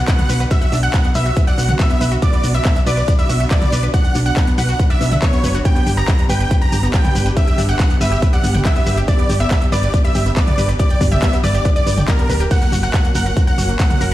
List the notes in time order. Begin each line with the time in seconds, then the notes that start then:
Already playing: B3 D4 F#4, downlifter
0.08 B3 F#5, kick, clap, closed hi-hat, shekere
0.18 B3, closed hi-hat, mid tom, shekere
0.29 B1 B4, open hi-hat, shekere
0.40 B4, closed hi-hat, shekere
0.51 F#4 E5, kick, closed hi-hat, shekere
0.62 F#5, closed hi-hat, shekere
0.72 B1 D4, open hi-hat, shekere
0.83 F#5, closed hi-hat, shekere
0.94 B3, kick, clap, closed hi-hat, shekere
1.04 B3, closed hi-hat, shekere
1.15 B1 B4 E5, open hi-hat, shekere
1.25 F#4, closed hi-hat, shekere
1.36 B4, kick, closed hi-hat, shekere
1.47 D5 F#5, closed hi-hat, shekere
1.58 B1 B3, open hi-hat, shekere
1.68 F#5, closed hi-hat, mid tom, shekere
1.79 B3 E5, kick, clap, closed hi-hat, shekere
1.90 B3, closed hi-hat, shekere
2.01 B1 B4, open hi-hat, shekere
2.12 F#4, closed hi-hat, shekere
2.22 B3 D5, kick, closed hi-hat, shekere
2.33 B3, closed hi-hat, shekere
2.44 B1 F#4, open hi-hat, shekere
2.54 B3 E5, closed hi-hat, shekere
2.65 B3, kick, clap, closed hi-hat, shekere
2.75 B3, closed hi-hat, shekere
2.87 B1 B4 D5, open hi-hat, shekere
2.97 B4, closed hi-hat, shekere
3.08 B4, kick, closed hi-hat, shekere
3.19 E5 B5, closed hi-hat, shekere
3.29 B1 F#4, open hi-hat, shekere
3.40 B3, closed hi-hat, shekere
3.51 B3 D5, kick, clap, closed hi-hat, shekere
3.61 B3, closed hi-hat, mid tom, shekere
3.72 B1 B4, open hi-hat, shekere
3.83 B4, closed hi-hat
3.94 F#4 F#5, kick, closed hi-hat, shekere
4.04 F#5, closed hi-hat, shekere
4.15 B1 D4, open hi-hat, shekere
4.26 F#5, closed hi-hat, shekere
4.37 B3, kick, clap, closed hi-hat, shekere
4.47 B3, closed hi-hat, shekere
4.58 B1 B4 F#5, open hi-hat, shekere
4.69 F#4, closed hi-hat, shekere
4.79 B4, kick, closed hi-hat, shekere
4.90 D5 E5, closed hi-hat, shekere
5.01 B1 B3, open hi-hat, shekere
5.12 F#5, closed hi-hat, mid tom, shekere
5.22 B3 C#5, kick, clap, closed hi-hat, shekere
5.33 B3, closed hi-hat, shekere
5.44 F#1 B4, open hi-hat, shekere
5.54 F#4, closed hi-hat, shekere
5.65 B3 G4 G5, kick, closed hi-hat, shekere
5.75 B3, closed hi-hat, shekere
5.87 G1 G4, open hi-hat, shekere
5.97 B3 A#5, shekere
6.08 B3, kick, clap, closed hi-hat, shekere
6.19 B3, closed hi-hat, shekere
6.29 G1 B4 G5, open hi-hat, shekere
6.40 B4, closed hi-hat, shekere
6.51 B4, kick, closed hi-hat, shekere
6.61 A#5 B5, closed hi-hat, shekere
6.72 G1 G4, open hi-hat, shekere
6.83 B3, closed hi-hat, shekere
6.93 B3 G5, kick, clap, closed hi-hat, shekere
7.04 B3, closed hi-hat, mid tom, shekere
7.15 G1 B4, open hi-hat, shekere
7.26 B4, closed hi-hat, shekere
7.37 G4 E5, kick, closed hi-hat, shekere
7.47 G5, closed hi-hat, shekere
7.58 G1 D4, open hi-hat, shekere
7.69 F#5 G5, shekere
7.79 B3, kick, clap, closed hi-hat, shekere
7.90 B3, closed hi-hat, shekere
8.01 G1 B4 E5, open hi-hat, shekere
8.12 G4, closed hi-hat, shekere
8.22 B4, kick, closed hi-hat, shekere
8.33 D5 F#5, closed hi-hat, shekere
8.44 G1 B3, open hi-hat, shekere
8.54 G5, closed hi-hat, mid tom, shekere
8.65 B3 E5, kick, clap, closed hi-hat, shekere
8.76 B3, closed hi-hat, shekere
8.86 G1 B4, open hi-hat, shekere
8.96 G4, closed hi-hat, shekere
9.08 B3 D5, kick, closed hi-hat, shekere
9.19 B3, closed hi-hat, shekere
9.29 G1 G4, open hi-hat, shekere
9.40 B3 E5, closed hi-hat, shekere
9.51 B3, kick, clap, closed hi-hat, shekere
9.61 B3, closed hi-hat, shekere
9.72 G1 B4 D5, open hi-hat, shekere
9.83 B4, closed hi-hat, shekere
9.94 B4, kick, closed hi-hat, shekere
10.04 E5 B5, closed hi-hat, shekere
10.15 G1 G4, open hi-hat, shekere
10.26 B3, closed hi-hat, shekere
10.36 B3 D5, kick, clap, closed hi-hat, shekere
10.47 B3, closed hi-hat, mid tom, shekere
10.58 G1 B4, open hi-hat, shekere
10.69 B4, closed hi-hat, shekere
10.79 G4 D5, kick, closed hi-hat, shekere
10.90 G5, closed hi-hat, shekere
11.01 G1 D4, kick, open hi-hat, shekere
11.11 E5 G5, closed hi-hat, mid tom, shekere
11.22 B3, kick, clap, closed hi-hat, shekere
11.33 B3, closed hi-hat, shekere
11.44 G1 B4 D5, open hi-hat, shekere
11.54 G4, closed hi-hat, shekere
11.65 B4, kick, closed hi-hat, shekere
11.76 D5, closed hi-hat, shekere
11.87 G1 B3, open hi-hat, shekere
11.97 G5, closed hi-hat, mid tom, shekere
12.08 B3 A#4, kick, clap, closed hi-hat, shekere
12.18 B3, closed hi-hat, shekere
12.29 D1 B4, open hi-hat, shekere
12.40 G4, closed hi-hat, shekere
12.51 A#3 C#4 F#4 F#5, kick, closed hi-hat, crash, shekere
12.62 A#3, closed hi-hat, shekere
12.72 F#1 F#4, open hi-hat, shekere
12.83 A#3 F#5, closed hi-hat, shekere
12.94 A#3, kick, clap, closed hi-hat, shekere
13.04 A#3, closed hi-hat, shekere
13.15 F#1 A#4 F#5, open hi-hat, shekere
13.26 A#4, closed hi-hat, shekere
13.37 A#4, kick, closed hi-hat, shekere
13.47 F#5 A#5, closed hi-hat, shekere
13.58 F#1 F#4, open hi-hat, shekere
13.69 A#3, closed hi-hat, shekere
13.79 A#3 F#5, kick, clap, closed hi-hat, shekere
13.90 A#3, closed hi-hat, mid tom, shekere
14.01 F#1 A#4, open hi-hat, shekere